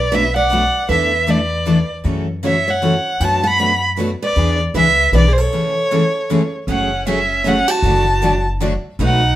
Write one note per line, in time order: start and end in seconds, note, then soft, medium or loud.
0.00 0.66 B1 medium
0.00 0.16 D5 medium
0.12 0.24 B2 medium
0.12 0.24 F#3 medium
0.12 0.24 A3 medium
0.12 0.24 D4 medium
0.12 0.24 F#4 medium
0.12 0.35 B4 medium
0.12 0.23 B4 medium
0.12 0.36 E5 medium
0.36 0.86 D5 medium
0.36 0.86 F#5 medium
0.50 0.62 B2 medium
0.50 0.63 F#3 medium
0.50 0.63 A3 medium
0.50 0.63 D4 medium
0.50 0.63 F#4 medium
0.50 0.62 B4 medium
0.89 1.82 E2 medium
0.89 1.11 E3 medium
0.89 1.11 A3 medium
0.89 1.11 D4 medium
0.89 1.11 E4 medium
0.89 1.11 A4 medium
0.89 1.25 B4 medium
0.89 1.31 E5 medium
1.27 1.39 E3 medium
1.27 1.39 A3 medium
1.27 1.39 D4 medium
1.27 1.39 E4 medium
1.27 1.39 A4 medium
1.27 1.90 B4 medium
1.27 1.91 D5 medium
1.66 1.78 E3 medium
1.66 1.78 A3 medium
1.66 1.78 D4 medium
1.66 1.78 E4 medium
1.66 1.78 A4 medium
2.04 2.98 F#2 medium
2.04 2.25 C#3 medium
2.04 2.26 E3 medium
2.04 2.26 F#3 medium
2.04 2.26 A3 medium
2.04 2.26 C#4 medium
2.04 2.26 E4 medium
2.04 2.26 F#4 medium
2.04 2.26 A4 medium
2.43 2.54 C#3 medium
2.43 2.55 E3 medium
2.43 2.55 F#3 medium
2.43 2.55 A3 medium
2.43 2.55 C#4 medium
2.43 2.55 E4 medium
2.43 2.55 F#4 medium
2.43 2.55 A4 medium
2.43 2.66 C#5 medium
2.47 2.72 E5 medium
2.68 3.21 C#5 medium
2.68 3.25 F#5 medium
2.82 2.93 C#3 medium
2.82 2.93 E3 medium
2.82 2.94 F#3 medium
2.82 2.94 A3 medium
2.82 2.94 C#4 medium
2.82 2.94 E4 medium
2.82 2.94 F#4 medium
2.82 2.94 A4 medium
3.20 4.13 F#2 medium
3.20 3.42 B2 medium
3.20 3.42 F#3 medium
3.20 3.42 A3 medium
3.20 3.42 D4 medium
3.20 3.42 F#4 medium
3.20 3.42 B4 medium
3.20 3.42 F#5 medium
3.20 3.48 A5 medium
3.44 3.83 F#5 medium
3.44 3.84 B5 medium
3.59 3.71 B2 medium
3.59 3.71 F#3 medium
3.59 3.71 A3 medium
3.59 3.71 D4 medium
3.59 3.71 F#4 medium
3.59 3.71 B4 medium
3.98 4.10 B2 medium
3.98 4.10 F#3 medium
3.98 4.10 A3 medium
3.98 4.10 D4 medium
3.98 4.10 F#4 medium
3.98 4.09 B4 medium
4.22 4.58 B4 medium
4.22 4.59 D5 medium
4.36 4.67 E2 medium
4.36 4.58 E3 medium
4.36 4.58 B3 medium
4.36 4.58 D4 medium
4.36 4.58 G#4 medium
4.36 4.58 B4 medium
4.74 5.08 C#2 medium
4.74 4.87 E3 medium
4.74 4.87 B3 medium
4.74 4.87 D4 medium
4.74 4.87 G#4 medium
4.74 5.11 B4 medium
4.74 4.87 B4 medium
4.74 5.12 E5 medium
5.12 5.46 B1 medium
5.12 5.25 E3 medium
5.12 5.25 B3 medium
5.12 5.25 D4 medium
5.12 5.26 G#4 medium
5.12 5.28 B4 medium
5.12 5.25 B4 medium
5.17 5.34 D5 medium
5.28 5.38 G#4 soft
5.33 5.42 C5 medium
5.38 6.53 A4 medium
5.38 6.55 C#5 medium
5.53 5.74 C#3 medium
5.53 5.74 E3 medium
5.53 5.73 G#3 medium
5.53 5.74 A3 medium
5.53 5.74 C#4 medium
5.53 5.74 E4 medium
5.53 5.74 G#4 medium
5.53 5.74 A4 medium
5.91 6.02 C#3 medium
5.91 6.02 E3 medium
5.91 6.02 G#3 medium
5.91 6.03 A3 medium
5.91 6.03 C#4 medium
5.91 6.02 E4 medium
5.91 6.03 G#4 medium
5.91 6.03 A4 medium
6.30 6.41 C#3 medium
6.30 6.41 E3 medium
6.30 6.41 G#3 medium
6.30 6.41 A3 medium
6.30 6.41 C#4 medium
6.30 6.41 E4 medium
6.30 6.42 G#4 medium
6.30 6.41 A4 medium
6.67 7.60 F#1 medium
6.67 6.90 C#3 medium
6.67 6.90 F#3 medium
6.67 6.90 A3 medium
6.67 7.04 C#4 medium
6.67 6.90 C#4 medium
6.67 6.90 G#4 medium
6.67 7.05 F#5 medium
7.07 7.18 C#3 medium
7.07 7.18 F#3 medium
7.07 7.18 A3 medium
7.07 7.43 C#4 medium
7.07 7.18 C#4 medium
7.07 7.18 G#4 loud
7.07 7.49 E5 medium
7.44 7.57 C#3 medium
7.44 7.57 F#3 medium
7.44 7.57 A3 medium
7.44 7.68 C#4 medium
7.44 7.57 C#4 loud
7.44 7.57 G#4 medium
7.44 7.71 F#5 medium
7.68 8.45 F#4 medium
7.68 8.46 A5 medium
7.82 8.75 F#1 medium
7.82 8.05 D3 medium
7.82 8.05 F#3 medium
7.82 8.05 A3 medium
7.82 8.05 D4 medium
7.82 8.05 F#4 medium
7.82 8.05 D5 medium
8.23 8.34 D3 medium
8.23 8.34 F#3 medium
8.23 8.34 A3 medium
8.23 8.34 D4 medium
8.23 8.34 F#4 loud
8.23 8.33 D5 medium
8.61 8.72 D3 medium
8.61 8.72 F#3 medium
8.61 8.72 A3 medium
8.61 8.72 D4 medium
8.61 8.73 F#4 loud
8.61 8.72 D5 loud
8.99 9.36 B1 medium
8.99 9.20 B2 medium
8.99 9.20 F#3 medium
8.99 9.20 A3 medium
8.99 9.20 D#4 medium
8.99 9.36 D#4 medium
8.99 9.20 F#4 medium
8.99 9.20 B4 medium
9.04 9.36 F#5 medium